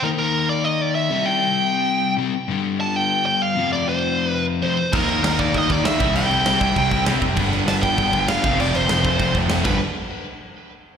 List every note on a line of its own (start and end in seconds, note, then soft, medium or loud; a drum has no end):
0.03 1.09 D#3 loud
0.03 1.11 A#3 loud
0.03 1.11 D#4 loud
0.03 0.09 A#4 medium
0.19 0.47 A#4 loud
0.49 0.64 D5 medium
0.64 0.81 D#5 medium
0.81 0.95 D5 loud
0.95 1.27 E5 medium
1.11 2.16 C3 loud
1.11 2.17 G3 loud
1.11 2.18 C4 loud
1.26 2.14 G5 loud
2.17 2.32 C3 medium
2.17 2.33 G3 medium
2.17 2.33 C4 medium
2.48 3.54 G2 medium
2.48 3.55 D3 loud
2.48 3.56 G3 loud
2.81 2.96 A5 loud
2.96 3.25 G5 loud
3.26 3.41 G5 loud
3.42 3.69 F5 loud
3.55 4.61 F2 loud
3.55 4.62 C3 loud
3.55 4.63 F3 loud
3.73 3.86 D5 loud
3.89 4.29 C5 loud
4.29 4.44 B4 loud
4.62 4.76 F2 medium
4.62 4.77 C3 medium
4.62 4.78 F3 medium
4.62 4.94 C5 medium
4.93 5.22 D#2 loud
4.93 5.08 D#3 medium
4.93 5.09 G3 medium
4.93 5.08 A#3 loud
4.93 5.07 D#4 loud
4.93 5.08 A#4 loud
4.93 kick loud
4.93 crash loud
5.08 5.22 D#3 medium
5.08 5.24 G3 medium
5.08 5.23 A#3 medium
5.08 5.24 D#4 medium
5.08 5.40 A#4 loud
5.08 crash medium
5.23 5.52 D#2 medium
5.23 5.38 D#3 medium
5.23 5.38 G3 medium
5.23 5.38 A#3 medium
5.23 5.37 D#4 medium
5.23 snare loud
5.23 crash medium
5.38 5.52 D#3 medium
5.38 5.53 G3 medium
5.38 5.53 A#3 loud
5.38 5.53 D#4 loud
5.38 5.57 D5 medium
5.38 kick loud
5.38 crash medium
5.53 5.69 D#2 loud
5.53 5.69 D#3 medium
5.53 5.69 G3 loud
5.53 5.69 A#3 medium
5.53 5.68 D#4 loud
5.53 5.71 D#5 medium
5.53 kick medium
5.53 crash medium
5.69 5.83 D#2 medium
5.69 5.83 D#3 medium
5.69 5.84 G3 medium
5.69 5.84 A#3 loud
5.69 5.84 D#4 loud
5.69 5.84 D5 loud
5.69 kick medium
5.69 crash medium
5.84 5.98 D#3 medium
5.84 5.99 G3 medium
5.84 5.99 A#3 medium
5.84 5.99 D#4 loud
5.84 6.13 E5 medium
5.84 snare loud
5.84 crash medium
5.99 6.14 C2 medium
5.99 6.15 C3 loud
5.99 6.15 G3 loud
5.99 6.14 C4 loud
5.99 6.14 E4 loud
5.99 kick loud
5.99 crash medium
6.14 6.29 C2 loud
6.14 6.29 C3 medium
6.14 6.30 G3 medium
6.14 6.30 C4 medium
6.14 6.30 E4 loud
6.14 7.03 G5 loud
6.14 crash medium
6.30 6.44 C2 loud
6.30 6.45 C3 medium
6.30 6.45 G3 medium
6.30 6.44 C4 medium
6.30 6.44 E4 loud
6.30 crash medium
6.45 6.60 C2 medium
6.45 6.59 C3 medium
6.45 6.59 G3 medium
6.45 6.59 C4 medium
6.45 6.60 E4 medium
6.45 snare loud
6.45 crash medium
6.60 6.75 C2 medium
6.60 6.75 C3 medium
6.60 6.75 G3 loud
6.60 6.74 C4 loud
6.60 6.74 E4 loud
6.60 kick medium
6.60 crash medium
6.75 6.91 C2 loud
6.75 6.89 C3 medium
6.75 6.89 G3 loud
6.75 6.90 C4 loud
6.75 6.90 E4 loud
6.75 kick medium
6.75 crash medium
6.90 7.06 C2 medium
6.90 7.05 C3 medium
6.90 7.04 G3 loud
6.90 7.04 C4 loud
6.90 7.04 E4 loud
6.90 kick medium
6.90 crash medium
7.05 7.21 C2 medium
7.05 7.19 C3 medium
7.05 7.19 G3 medium
7.05 7.19 C4 medium
7.05 7.20 E4 medium
7.05 snare loud
7.05 crash medium
7.20 7.36 F1 loud
7.20 7.35 C3 medium
7.20 7.34 G3 loud
7.20 7.35 C4 medium
7.20 7.36 E4 loud
7.20 kick medium
7.20 crash medium
7.35 7.66 G1 loud
7.35 7.51 G2 medium
7.35 7.50 D3 loud
7.35 7.50 G3 medium
7.35 7.49 B3 loud
7.35 7.49 D4 loud
7.35 kick loud
7.35 crash loud
7.50 7.64 G2 medium
7.50 7.65 D3 medium
7.50 7.65 G3 medium
7.50 7.66 B3 loud
7.50 7.66 D4 loud
7.50 crash medium
7.66 7.96 G1 loud
7.66 7.82 G2 medium
7.66 7.81 D3 medium
7.66 7.81 G3 medium
7.66 7.81 B3 loud
7.66 7.80 D4 loud
7.66 7.73 A5 loud
7.66 snare loud
7.66 crash loud
7.81 7.95 G2 medium
7.81 7.95 D3 loud
7.81 7.96 G3 loud
7.81 7.96 B3 loud
7.81 7.96 D4 loud
7.81 8.25 G5 loud
7.81 kick loud
7.81 crash medium
7.96 8.12 G1 loud
7.96 8.11 G2 medium
7.96 8.11 D3 loud
7.96 8.11 G3 medium
7.96 8.10 B3 loud
7.96 8.10 D4 loud
7.96 kick medium
7.96 crash medium
8.11 8.28 G1 medium
8.11 8.25 G2 medium
8.11 8.26 D3 loud
8.11 8.26 G3 loud
8.11 8.26 B3 medium
8.11 8.27 D4 loud
8.11 kick medium
8.11 crash medium
8.26 8.42 G2 medium
8.26 8.43 G2 loud
8.26 8.42 D3 medium
8.26 8.42 G3 medium
8.26 8.42 B3 medium
8.26 8.42 D4 loud
8.26 8.57 F5 medium
8.26 snare loud
8.26 crash loud
8.42 8.58 F1 medium
8.42 8.58 F2 loud
8.42 8.57 C3 loud
8.42 8.57 F3 loud
8.42 8.57 A3 loud
8.42 8.56 C4 loud
8.42 kick loud
8.42 crash medium
8.58 8.74 F1 loud
8.58 8.71 F2 medium
8.58 8.72 C3 medium
8.58 8.73 F3 loud
8.58 8.73 A3 loud
8.58 8.74 C4 loud
8.58 8.75 D5 loud
8.58 crash loud
8.73 8.88 F1 medium
8.73 8.88 F2 medium
8.73 8.88 C3 medium
8.73 8.87 F3 medium
8.73 8.87 A3 medium
8.73 8.87 C4 medium
8.73 9.35 C5 medium
8.73 crash medium
8.88 9.04 F1 loud
8.88 9.01 F2 medium
8.88 9.01 C3 medium
8.88 9.02 F3 medium
8.88 9.02 A3 medium
8.88 9.02 C4 medium
8.88 snare loud
8.88 crash medium
9.02 9.19 F1 medium
9.02 9.18 F2 medium
9.02 9.17 C3 loud
9.02 9.17 F3 loud
9.02 9.16 A3 loud
9.02 9.16 C4 loud
9.02 kick loud
9.02 crash medium
9.17 9.34 F1 medium
9.17 9.31 F2 medium
9.17 9.32 C3 medium
9.17 9.32 F3 medium
9.17 9.32 A3 loud
9.17 9.32 C4 loud
9.17 kick loud
9.17 crash medium
9.32 9.49 F1 medium
9.32 9.49 F2 loud
9.32 9.48 C3 loud
9.32 9.48 F3 loud
9.32 9.48 A3 loud
9.32 9.47 C4 loud
9.32 kick medium
9.32 crash medium
9.48 9.64 F1 medium
9.48 9.62 F2 medium
9.48 9.63 C3 medium
9.48 9.63 F3 medium
9.48 9.64 A3 medium
9.48 9.64 C4 medium
9.48 snare loud
9.48 crash medium
9.63 9.79 G1 loud
9.63 9.76 G2 medium
9.63 9.76 D3 loud
9.63 9.77 G3 loud
9.63 9.77 B3 medium
9.63 9.77 D4 loud
9.63 9.79 B4 medium
9.63 kick loud
9.63 crash medium